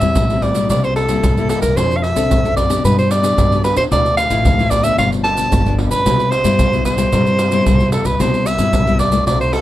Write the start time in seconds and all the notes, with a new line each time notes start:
Already playing: A2 E5
0.01 E2 G3 C4 E4, pandeiro, maracas
0.15 A2 E3, pandeiro, maracas, surdo
0.30 G3 C4 E4, pandeiro, maracas
0.42 D5, pandeiro, surdo
0.55 G3 A#3 E4, pandeiro, maracas
0.70 C2 C3 D5, pandeiro, maracas, surdo
0.84 C5, pandeiro, maracas
0.96 A4, pandeiro
1.09 G3 A#3 E4, pandeiro, maracas
1.23 C2 G2, pandeiro, maracas, surdo
1.37 G3 A#3 E4, pandeiro, maracas
1.49 A4, pandeiro, maracas
1.62 C2 A#4, pandeiro, maracas
1.76 F2 F3 C4 D4 A4 C5, pandeiro, maracas, surdo
1.91 pandeiro, maracas
1.97 F5
2.03 E5, pandeiro
2.16 C2 C4 D4 A4, pandeiro, maracas
2.30 F#2 C3, pandeiro, maracas, surdo
2.44 C4 D4 A4, pandeiro, maracas
2.57 D5, pandeiro, maracas, surdo
2.69 B3 D4 G4, pandeiro, maracas
2.83 G2 G3 B4, pandeiro, maracas, surdo
2.99 C5, pandeiro, maracas
3.11 D5, pandeiro, maracas
3.22 B3 D4 G4, pandeiro, maracas
3.37 G2 D3, pandeiro, maracas, surdo
3.52 B3 D4 G4, pandeiro, maracas
3.64 B4, pandeiro, maracas
3.76 E2 C5, pandeiro, maracas
3.91 D2 D3 F3 A3 E4 D5, pandeiro, maracas, surdo
4.06 pandeiro, maracas
4.17 F5, pandeiro, maracas
4.30 A1 F3 A3 E4, pandeiro, maracas
4.45 D2 A2, pandeiro, maracas, surdo
4.59 F3 A3 E4, pandeiro, maracas
4.70 D5, pandeiro, maracas, surdo
4.83 F3 B3 D4 E5, pandeiro, maracas
4.98 G1 G2 F5, pandeiro, maracas, surdo
5.12 pandeiro, maracas
5.24 A5, pandeiro
5.37 F3 B3 D4, pandeiro, maracas
5.52 G1 D3, pandeiro, maracas, surdo
5.66 F3 B3 D4, pandeiro, maracas
5.79 pandeiro
5.90 G2 B4, pandeiro, maracas
6.05 C2 C3 G3 B3 E4, pandeiro, maracas, surdo
6.20 pandeiro, maracas
6.31 C5, pandeiro, maracas
6.44 G2 G3 B3 E4, pandeiro, maracas
6.59 C2 G2, pandeiro, maracas, surdo
6.73 G3 B3 E4, pandeiro, maracas
6.85 C5, pandeiro, maracas, surdo
6.98 G3 B3 E4, pandeiro, maracas
7.12 G2 C3 G3 E4, pandeiro, maracas, surdo
7.26 pandeiro, maracas
7.39 pandeiro, maracas
7.51 G3 B3 E4, pandeiro, maracas
7.66 C2 G2, pandeiro, maracas, surdo
7.80 G3 B3 E4, pandeiro, maracas
7.92 A4, pandeiro, maracas
8.05 C2 B4, pandeiro, maracas
8.20 C2 C3 G3 B3 E4 C5, pandeiro, maracas, surdo
8.34 pandeiro, maracas
8.46 E5, pandeiro, maracas
8.58 G2 G3 B3 E4, pandeiro, maracas
8.73 C2 G2, pandeiro, maracas, surdo
8.87 G3 B3 E4, pandeiro, maracas
8.99 D5, pandeiro, maracas, surdo
9.12 A3 E4 F4, pandeiro, maracas
9.27 C2 C3 D5, pandeiro, maracas, surdo
9.41 C5, pandeiro, maracas
9.53 A4, pandeiro